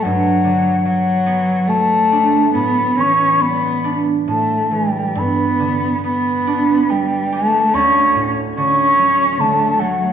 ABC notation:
X:1
M:3/4
L:1/8
Q:1/4=72
K:Glyd
V:1 name="Flute"
f2 f2 a2 | b c' b z a g | b2 b2 g a | c' z c'2 a f |]
V:2 name="Cello"
F,2 F,2 A,2 | B, C B, z A, G, | B,2 B,2 G, A, | C z C2 A, F, |]
V:3 name="Harp" clef=bass
G,, D, F, B, F, D | A,, E, G, D A,, E, | G,, D, B, D B, G | D,, A,, D, F, D, A, |]